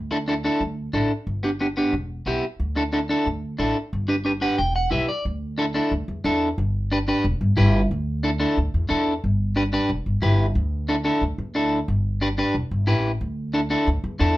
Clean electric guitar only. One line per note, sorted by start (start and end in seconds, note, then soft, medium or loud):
0.11 0.17 D4 medium
0.11 0.17 E4 medium
0.11 0.17 A4 medium
0.28 0.33 D4 medium
0.28 0.34 E4 medium
0.28 0.34 A4 medium
0.44 0.62 D4 medium
0.44 0.62 E4 medium
0.44 0.62 A4 medium
0.94 1.11 D4 medium
0.94 1.11 E4 medium
0.94 1.11 A4 medium
1.43 1.49 B3 medium
1.43 1.49 D4 medium
1.43 1.49 G4 medium
1.61 1.66 B3 medium
1.61 1.66 D4 medium
1.61 1.66 G4 medium
1.77 1.93 B3 medium
1.77 1.94 D4 medium
1.77 1.94 G4 medium
2.27 2.44 B3 medium
2.27 2.44 E4 medium
2.27 2.44 G4 medium
2.76 2.82 D4 medium
2.76 2.82 E4 medium
2.76 2.83 A4 medium
2.93 2.99 D4 medium
2.93 2.99 E4 medium
2.93 2.99 A4 medium
3.09 3.27 D4 medium
3.09 3.27 E4 medium
3.09 3.27 A4 medium
3.59 3.76 D4 medium
3.59 3.77 E4 medium
3.59 3.77 A4 medium
4.08 4.15 D4 medium
4.08 4.15 G4 medium
4.08 4.15 B4 medium
4.25 4.31 D4 medium
4.25 4.31 G4 medium
4.25 4.32 B4 medium
4.41 4.58 D4 medium
4.41 4.59 G4 medium
4.41 4.59 B4 medium
4.41 4.58 F#5 medium
4.58 4.74 G5 medium
4.76 4.91 F#5 medium
4.91 5.09 E4 medium
4.91 5.09 G4 medium
4.91 5.10 B4 medium
4.91 5.07 E5 medium
5.08 5.24 D5 medium
5.58 5.64 D4 medium
5.58 5.65 E4 medium
5.58 5.65 A4 medium
5.74 5.92 D4 medium
5.74 5.92 E4 medium
5.74 5.93 A4 medium
6.24 6.48 D4 medium
6.24 6.48 E4 medium
6.24 6.48 A4 medium
6.92 6.97 D4 medium
6.92 6.97 G4 medium
6.92 6.98 B4 medium
7.08 7.25 D4 medium
7.08 7.24 G4 medium
7.08 7.25 B4 medium
7.57 7.80 E4 medium
7.57 7.81 G4 medium
7.57 7.81 B4 medium
8.23 8.30 D4 medium
8.23 8.30 E4 medium
8.23 8.30 A4 medium
8.40 8.57 D4 medium
8.40 8.58 E4 medium
8.40 8.58 A4 medium
8.89 9.13 D4 medium
8.89 9.13 E4 medium
8.89 9.13 A4 medium
9.56 9.62 D4 medium
9.56 9.62 G4 medium
9.56 9.62 B4 medium
9.73 9.90 D4 medium
9.73 9.90 G4 medium
9.73 9.90 B4 medium
10.22 10.46 E4 medium
10.22 10.46 G4 medium
10.22 10.46 B4 medium
10.89 10.95 D4 medium
10.89 10.95 E4 medium
10.89 10.95 A4 medium
11.05 11.22 D4 medium
11.05 11.23 E4 medium
11.05 11.23 A4 medium
11.55 11.78 D4 medium
11.55 11.79 E4 medium
11.55 11.79 A4 medium
12.21 12.27 D4 medium
12.21 12.28 G4 medium
12.21 12.28 B4 medium
12.38 12.55 D4 medium
12.38 12.55 G4 medium
12.38 12.55 B4 medium
12.87 13.11 E4 medium
12.87 13.11 G4 medium
12.87 13.11 B4 medium
13.54 13.60 D4 medium
13.54 13.60 E4 medium
13.54 13.60 A4 medium
13.70 13.88 D4 medium
13.70 13.88 E4 medium
13.70 13.88 A4 medium
14.19 14.37 D4 medium
14.19 14.37 E4 medium
14.19 14.37 A4 medium